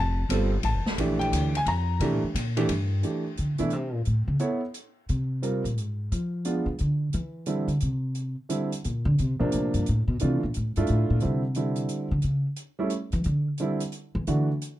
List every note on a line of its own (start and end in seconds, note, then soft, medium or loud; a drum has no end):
0.00 0.29 F1 medium
0.00 0.50 A5 medium
0.29 0.63 G1 loud
0.29 0.50 G3 medium
0.29 0.50 C4 medium
0.29 0.51 F4 medium
0.29 0.50 A4 medium
0.29 kick soft
0.29 hi-hat pedal medium
0.29 ride medium
0.63 0.74 A1 medium
0.63 1.17 A5 medium
0.63 kick soft
0.63 ride medium
0.74 0.85 F1 medium
0.85 0.97 D#1 medium
0.85 snare medium
0.98 1.31 A#1 medium
0.98 1.50 E3 medium
0.98 1.51 A3 medium
0.98 1.51 D4 medium
0.98 1.51 G4 medium
0.98 kick soft
0.98 ride medium
1.19 1.52 G5 medium
1.19 ride soft
1.32 1.65 D2 medium
1.32 kick soft
1.32 hi-hat pedal medium
1.32 ride medium
1.55 1.67 G#5 loud
1.55 ride medium
1.66 1.99 F2 medium
1.66 2.20 A#5 medium
1.66 kick soft
1.66 ride medium
2.00 2.12 C3 medium
2.00 2.21 E3 medium
2.00 2.21 A3 medium
2.00 2.21 D4 medium
2.00 2.21 G4 medium
2.00 kick soft
2.00 ride medium
2.12 2.23 A#2 medium
2.23 2.34 G2 medium
2.34 2.68 A#2 medium
2.34 kick soft
2.34 hi-hat pedal medium
2.34 ride medium
2.57 2.68 E3 medium
2.57 2.68 A3 medium
2.57 2.68 D4 medium
2.57 2.68 G4 medium
2.57 ride medium
2.69 3.02 G2 loud
2.69 kick soft
2.69 ride medium
3.03 3.23 E3 soft
3.03 3.23 A3 soft
3.03 3.23 D4 soft
3.03 3.24 G4 soft
3.03 closed hi-hat soft
3.37 3.59 D3 medium
3.37 closed hi-hat soft
3.58 3.73 B2 medium
3.58 3.70 E3 medium
3.58 3.70 A3 medium
3.58 3.70 D4 medium
3.58 3.70 E4 medium
3.58 closed hi-hat soft
3.70 3.93 C3 medium
3.70 closed hi-hat soft
3.93 4.05 A#2 medium
4.05 4.27 A2 medium
4.05 closed hi-hat soft
4.28 4.35 C#3 medium
4.39 4.60 B3 medium
4.39 4.60 E4 soft
4.39 4.60 A4 soft
4.39 4.60 C#5 medium
4.39 closed hi-hat soft
4.74 closed hi-hat soft
5.09 5.61 C3 medium
5.09 closed hi-hat soft
5.43 5.62 G3 soft
5.43 5.62 C4 soft
5.43 5.62 F4 soft
5.43 5.63 A#4 medium
5.43 closed hi-hat soft
5.64 5.78 A#2 medium
5.64 closed hi-hat soft
5.78 6.11 G#2 medium
5.78 closed hi-hat soft
6.12 6.63 F3 medium
6.12 closed hi-hat soft
6.45 6.65 G#3 soft
6.45 6.65 B3 soft
6.45 6.65 D4 medium
6.45 6.65 F4 medium
6.45 closed hi-hat soft
6.66 6.78 E3 medium
6.78 7.13 D3 medium
6.78 closed hi-hat soft
7.13 7.66 E3 medium
7.13 closed hi-hat soft
7.46 7.67 D3 medium
7.46 7.67 G3 soft
7.46 7.67 C4 soft
7.46 7.67 E4 medium
7.46 closed hi-hat soft
7.68 7.80 D3 medium
7.68 closed hi-hat soft
7.80 8.34 C3 medium
7.80 closed hi-hat soft
8.15 closed hi-hat soft
8.49 8.69 D3 soft
8.49 8.69 G3 soft
8.49 8.69 C4 soft
8.49 8.69 E4 medium
8.49 closed hi-hat medium
8.72 closed hi-hat soft
8.84 9.05 A#2 medium
8.84 closed hi-hat soft
9.05 9.17 D3 loud
9.18 9.40 C3 medium
9.18 closed hi-hat soft
9.40 9.52 A#2 medium
9.40 9.83 C3 medium
9.40 9.83 F3 medium
9.40 9.83 A#3 medium
9.40 9.84 D4 medium
9.52 9.73 A2 medium
9.52 closed hi-hat soft
9.74 9.85 G2 medium
9.74 closed hi-hat soft
9.86 10.07 A2 medium
9.86 closed hi-hat soft
10.08 10.19 B2 medium
10.19 10.42 C3 medium
10.19 10.40 E3 medium
10.19 10.40 A3 soft
10.19 10.40 D4 medium
10.19 10.40 F4 medium
10.19 closed hi-hat soft
10.43 10.54 A#2 medium
10.54 10.76 A2 medium
10.54 closed hi-hat soft
10.76 10.88 G2 medium
10.76 11.20 A3 medium
10.76 11.20 D4 medium
10.76 11.20 E4 medium
10.76 11.20 F4 medium
10.76 closed hi-hat soft
10.87 11.10 A2 medium
10.87 closed hi-hat soft
11.10 11.22 A#2 medium
11.20 11.41 D3 soft
11.20 11.41 G3 soft
11.20 11.42 C4 soft
11.20 11.41 E4 medium
11.20 closed hi-hat soft
11.24 11.87 C3 medium
11.54 12.07 D3 medium
11.54 12.08 G3 soft
11.54 12.08 C4 soft
11.54 12.08 E4 medium
11.54 closed hi-hat soft
11.75 closed hi-hat soft
11.88 closed hi-hat soft
12.11 12.23 D3 medium
12.22 12.45 C#3 medium
12.22 closed hi-hat soft
12.56 closed hi-hat soft
12.79 12.90 G3 medium
12.79 12.90 A3 medium
12.79 12.90 C#4 medium
12.79 12.90 E4 medium
12.90 closed hi-hat medium
13.12 13.25 E3 loud
13.12 closed hi-hat soft
13.24 13.47 D3 medium
13.24 closed hi-hat soft
13.57 13.79 D3 medium
13.57 13.80 G3 medium
13.57 13.80 C4 soft
13.57 13.80 E4 medium
13.57 closed hi-hat soft
13.80 closed hi-hat soft
13.92 closed hi-hat soft
14.15 14.27 E3 loud
14.27 14.49 D3 medium
14.27 14.47 E3 medium
14.27 14.47 A3 soft
14.27 14.47 D4 soft
14.27 14.47 F#4 medium
14.27 closed hi-hat soft
14.61 closed hi-hat soft